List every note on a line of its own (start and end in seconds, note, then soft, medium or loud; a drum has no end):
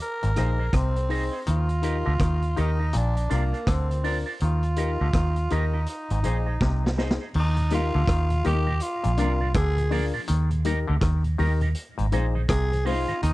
0.02 0.70 A#4 loud
0.23 0.36 G#1 medium
0.23 0.31 G#2 medium
0.23 closed hi-hat soft
0.36 0.71 A#1 medium
0.36 0.59 A#2 medium
0.36 0.56 D#4 medium
0.36 0.49 D#4 medium
0.36 0.56 G#4 medium
0.36 0.49 G#4 medium
0.36 0.57 C5 medium
0.36 0.50 C5 medium
0.36 0.50 D#5 medium
0.36 cross-stick medium
0.36 closed hi-hat medium
0.59 0.66 D#4 soft
0.59 0.64 G#4 soft
0.59 0.66 G#4 medium
0.59 0.64 C5 soft
0.59 0.65 C5 medium
0.59 0.65 D#5 medium
0.73 1.29 C2 medium
0.73 0.96 C3 medium
0.73 1.44 C4 medium
0.73 kick loud
0.73 cross-stick loud
0.73 closed hi-hat medium
0.95 1.01 G#4 soft
0.95 1.01 C5 soft
0.95 closed hi-hat soft
1.09 1.22 D#4 medium
1.09 1.29 D#4 medium
1.09 1.30 G#4 medium
1.09 1.23 G#4 medium
1.09 1.30 C5 medium
1.09 1.23 C5 medium
1.09 1.23 D#5 medium
1.09 open hi-hat medium
1.32 1.39 D#4 soft
1.32 1.39 G#4 soft
1.32 1.39 C5 medium
1.32 1.38 D#5 medium
1.46 2.03 D#2 loud
1.46 1.69 D#3 medium
1.46 2.62 F4 medium
1.46 closed hi-hat medium
1.69 closed hi-hat soft
1.82 2.03 D#4 medium
1.82 1.96 D#4 medium
1.82 1.96 G4 medium
1.82 2.03 G4 medium
1.82 2.03 A#4 medium
1.82 1.96 A#4 medium
1.82 1.96 D#5 medium
1.82 closed hi-hat medium
2.06 2.20 D2 medium
2.06 2.14 D3 medium
2.06 2.13 D#4 soft
2.06 2.12 G4 medium
2.06 2.12 A#4 medium
2.06 2.12 D#5 medium
2.19 2.54 D#2 medium
2.19 2.42 D#3 medium
2.19 kick loud
2.19 cross-stick medium
2.19 closed hi-hat medium
2.42 closed hi-hat soft
2.56 2.92 D#2 medium
2.56 2.79 D#3 medium
2.56 2.77 D#4 medium
2.56 2.69 D#4 medium
2.56 2.70 G4 medium
2.56 2.77 G4 medium
2.56 2.70 A#4 loud
2.56 2.77 A#4 loud
2.56 2.70 D#5 loud
2.56 closed hi-hat medium
2.60 2.99 D#4 medium
2.80 2.86 D#4 soft
2.80 2.86 G4 medium
2.80 2.86 A#4 medium
2.80 2.86 D#5 medium
2.93 3.28 A#1 loud
2.93 3.15 A#2 medium
2.93 closed hi-hat medium
2.98 3.32 D4 medium
3.17 closed hi-hat soft
3.29 3.52 C2 medium
3.29 3.44 C3 medium
3.29 3.42 D4 medium
3.29 3.50 D4 medium
3.29 3.43 F4 medium
3.29 3.51 F4 medium
3.29 3.43 A#4 medium
3.29 3.51 A#4 medium
3.29 3.43 D5 medium
3.29 closed hi-hat medium
3.34 3.73 A#3 medium
3.53 3.60 D4 soft
3.53 3.59 F4 soft
3.53 3.60 F4 soft
3.53 3.59 A#4 soft
3.53 3.60 A#4 medium
3.53 3.59 D5 medium
3.53 closed hi-hat soft
3.67 4.23 D2 medium
3.67 3.90 D3 medium
3.67 kick loud
3.67 cross-stick loud
3.67 closed hi-hat medium
3.71 4.18 C4 medium
3.90 3.96 F4 soft
3.90 3.96 A#4 soft
3.90 closed hi-hat soft
4.03 4.16 D4 medium
4.03 4.24 D4 medium
4.03 4.17 F4 medium
4.03 4.24 F4 medium
4.03 4.17 A#4 loud
4.03 4.24 A#4 medium
4.03 4.17 D5 loud
4.03 open hi-hat medium
4.26 4.33 D4 medium
4.26 4.33 F4 medium
4.26 4.33 A#4 medium
4.26 4.32 D5 medium
4.40 4.97 D#2 loud
4.40 4.64 D#3 medium
4.40 closed hi-hat medium
4.44 5.54 F4 medium
4.63 closed hi-hat soft
4.76 4.90 D#4 medium
4.76 4.97 D#4 medium
4.76 4.97 G4 medium
4.76 4.90 G4 medium
4.76 4.90 A#4 medium
4.76 4.98 A#4 medium
4.76 4.91 D#5 medium
4.76 closed hi-hat medium
5.00 5.13 D2 medium
5.00 5.10 D3 medium
5.00 5.07 D#4 soft
5.00 5.07 G4 medium
5.00 5.07 A#4 medium
5.00 5.06 D#5 medium
5.13 5.48 D#2 medium
5.13 5.37 D#3 medium
5.13 kick loud
5.13 cross-stick loud
5.13 closed hi-hat medium
5.36 closed hi-hat soft
5.50 5.85 D#2 medium
5.50 5.73 D#3 medium
5.50 5.71 D#4 medium
5.50 5.64 D#4 medium
5.50 5.89 D#4 medium
5.50 5.71 G4 medium
5.50 5.64 G4 medium
5.50 5.64 A#4 medium
5.50 5.71 A#4 loud
5.50 5.64 D#5 medium
5.50 closed hi-hat medium
5.73 5.80 D#4 medium
5.73 5.80 G4 medium
5.73 5.80 A#4 medium
5.73 5.80 D#5 medium
5.86 6.95 D#4 medium
5.86 closed hi-hat medium
6.10 6.23 G#1 medium
6.10 6.19 G#2 medium
6.10 closed hi-hat soft
6.23 6.59 A#1 medium
6.23 6.47 A#2 medium
6.23 6.44 D#4 medium
6.23 6.37 D#4 medium
6.23 6.37 G#4 medium
6.23 6.44 G#4 medium
6.23 6.37 C5 medium
6.23 6.44 C5 medium
6.23 6.37 D#5 medium
6.23 closed hi-hat medium
6.46 6.53 D#4 soft
6.46 6.53 G#4 soft
6.46 6.53 C5 soft
6.46 6.53 D#5 medium
6.61 7.17 C2 medium
6.61 6.84 C3 medium
6.61 kick loud
6.61 snare medium
6.83 6.89 G#4 soft
6.83 6.89 C5 soft
6.83 snare medium
6.97 7.10 D#4 medium
6.97 7.18 D#4 medium
6.97 7.11 G#4 medium
6.97 7.18 G#4 medium
6.97 7.11 C5 medium
6.97 7.18 C5 medium
6.97 7.11 D#5 medium
6.97 snare medium
7.11 snare medium
7.20 7.27 D#4 soft
7.20 7.27 G#4 soft
7.20 7.27 C5 medium
7.20 7.27 D#5 medium
7.34 7.90 D#2 loud
7.34 7.57 D#3 medium
7.34 crash loud
7.39 7.71 D#4 medium
7.57 7.63 D#2 medium
7.57 7.63 A#2 medium
7.57 closed hi-hat soft
7.70 7.80 G3 medium
7.70 7.80 A#3 medium
7.70 7.80 D#4 medium
7.70 7.84 D#4 medium
7.70 7.91 D#4 medium
7.70 8.42 F4 loud
7.70 7.84 G4 medium
7.70 7.91 G4 medium
7.70 7.84 A#4 medium
7.70 7.92 A#4 loud
7.70 7.85 D#5 medium
7.70 closed hi-hat medium
7.94 8.07 D2 medium
7.94 8.03 D3 medium
7.94 8.01 D#4 medium
7.94 8.01 G4 medium
7.94 8.01 A#4 medium
7.94 8.00 D#5 medium
8.08 8.42 D#2 loud
8.08 8.30 D#3 medium
8.08 kick loud
8.08 cross-stick loud
8.08 closed hi-hat medium
8.30 8.36 D#2 medium
8.30 8.37 A#2 medium
8.30 closed hi-hat soft
8.44 8.79 D#2 medium
8.44 8.67 D#3 medium
8.44 8.54 G3 medium
8.44 8.54 A#3 medium
8.44 8.57 D#4 medium
8.44 8.65 D#4 medium
8.44 8.54 D#4 medium
8.44 8.58 G4 medium
8.44 8.65 G4 medium
8.44 8.83 G4 loud
8.44 8.58 A#4 medium
8.44 8.65 A#4 loud
8.44 8.58 D#5 medium
8.44 closed hi-hat medium
8.67 8.73 D#2 medium
8.67 8.73 A#2 medium
8.67 8.74 D#4 medium
8.67 8.74 G4 medium
8.67 8.74 A#4 medium
8.67 8.73 D#5 medium
8.80 9.54 F4 loud
8.80 closed hi-hat medium
9.04 9.19 A#1 loud
9.04 9.12 A#2 medium
9.04 9.10 A#2 medium
9.04 closed hi-hat soft
9.17 9.53 C2 medium
9.17 9.40 C3 medium
9.17 9.28 F3 medium
9.17 9.28 A#3 medium
9.17 9.38 D4 medium
9.17 9.31 D4 medium
9.17 9.28 D4 medium
9.17 9.38 F4 medium
9.17 9.31 F4 medium
9.17 9.39 A#4 loud
9.17 9.32 A#4 medium
9.17 9.32 D5 medium
9.17 closed hi-hat medium
9.41 9.47 A#2 medium
9.41 9.48 D4 medium
9.41 9.46 F4 soft
9.41 9.47 F4 medium
9.41 9.46 A#4 soft
9.41 9.47 A#4 medium
9.41 9.47 D5 medium
9.54 10.11 D2 medium
9.54 9.77 D3 medium
9.54 10.11 G#4 loud
9.54 kick loud
9.54 cross-stick loud
9.54 closed hi-hat loud
9.77 9.83 A#2 medium
9.77 9.83 F4 soft
9.77 9.83 A#4 soft
9.77 closed hi-hat soft
9.90 10.00 F3 medium
9.90 10.01 A#3 medium
9.90 10.04 D4 medium
9.90 10.11 D4 medium
9.90 10.01 D4 medium
9.90 10.04 F4 medium
9.90 10.12 F4 medium
9.90 10.12 A#4 loud
9.90 10.05 A#4 loud
9.90 10.05 D5 loud
9.90 open hi-hat medium
10.14 10.20 A#2 medium
10.14 10.21 D4 medium
10.14 10.21 F4 medium
10.14 10.20 A#4 medium
10.14 10.20 D5 medium
10.27 10.85 D#2 loud
10.27 10.50 D#3 medium
10.27 closed hi-hat loud
10.51 10.57 D#2 medium
10.51 10.57 A#2 medium
10.51 closed hi-hat soft
10.64 10.74 G3 medium
10.64 10.74 A#3 medium
10.64 10.85 D#4 medium
10.64 10.78 D#4 medium
10.64 10.75 D#4 medium
10.64 10.85 G4 medium
10.64 10.78 G4 medium
10.64 10.78 A#4 loud
10.64 10.85 A#4 loud
10.64 10.79 D#5 medium
10.64 closed hi-hat medium
10.88 11.02 D2 medium
10.88 10.96 D3 medium
10.88 10.95 D#4 medium
10.88 10.95 G4 medium
10.88 10.94 A#4 medium
10.88 10.94 D#5 medium
11.01 11.36 D#2 medium
11.01 11.23 D#3 medium
11.01 kick loud
11.01 cross-stick loud
11.01 closed hi-hat medium
11.23 11.30 D#2 medium
11.23 11.30 A#2 medium
11.23 closed hi-hat soft
11.38 11.73 D#2 medium
11.38 11.61 D#3 medium
11.38 11.47 G3 medium
11.38 11.48 A#3 medium
11.38 11.58 D#4 medium
11.38 11.51 D#4 medium
11.38 11.48 D#4 medium
11.38 11.59 G4 medium
11.38 11.52 G4 medium
11.38 11.59 A#4 loud
11.38 11.52 A#4 medium
11.38 11.52 D#5 loud
11.38 open hi-hat medium
11.60 11.66 D#2 medium
11.60 11.66 A#2 medium
11.60 11.69 D#4 medium
11.60 11.68 G4 medium
11.60 11.68 A#4 medium
11.60 11.68 D#5 medium
11.60 closed hi-hat soft
11.75 closed hi-hat medium
11.98 12.12 G#1 medium
11.98 12.03 G#2 medium
11.98 12.06 G#2 medium
11.98 12.04 D#3 medium
11.98 closed hi-hat medium
12.12 12.46 A#1 medium
12.12 12.35 A#2 medium
12.12 12.21 G#3 medium
12.12 12.21 C4 medium
12.12 12.32 D#4 medium
12.12 12.25 D#4 medium
12.12 12.22 D#4 medium
12.12 12.32 G#4 medium
12.12 12.25 G#4 medium
12.12 12.25 C5 loud
12.12 12.33 C5 loud
12.12 12.26 D#5 loud
12.12 closed hi-hat medium
12.35 12.40 G#2 medium
12.35 12.41 D#3 medium
12.35 12.41 D#4 medium
12.35 12.40 G#4 soft
12.35 12.41 G#4 medium
12.35 12.40 C5 soft
12.35 12.41 C5 medium
12.35 12.41 D#5 medium
12.49 13.05 C2 medium
12.49 12.72 C3 medium
12.49 12.88 G#4 loud
12.49 kick loud
12.49 cross-stick loud
12.49 closed hi-hat medium
12.71 12.77 G#2 medium
12.71 12.77 D#3 medium
12.71 12.77 G#4 soft
12.71 12.77 C5 soft
12.71 closed hi-hat soft
12.85 12.94 G#3 medium
12.85 12.94 C4 medium
12.85 12.98 D#4 medium
12.85 12.94 D#4 medium
12.85 13.06 D#4 medium
12.85 13.22 F4 medium
12.85 12.98 G#4 loud
12.85 13.06 G#4 medium
12.85 12.98 C5 medium
12.85 13.06 C5 loud
12.85 12.99 D#5 loud
12.85 open hi-hat medium
13.07 13.14 G#2 medium
13.07 13.13 D#3 medium
13.07 13.15 D#4 medium
13.07 13.15 G#4 medium
13.07 13.15 C5 medium
13.07 13.14 D#5 medium
13.07 closed hi-hat soft
13.23 13.33 D#2 loud
13.23 13.33 D#3 medium
13.23 13.33 D#4 loud
13.23 closed hi-hat medium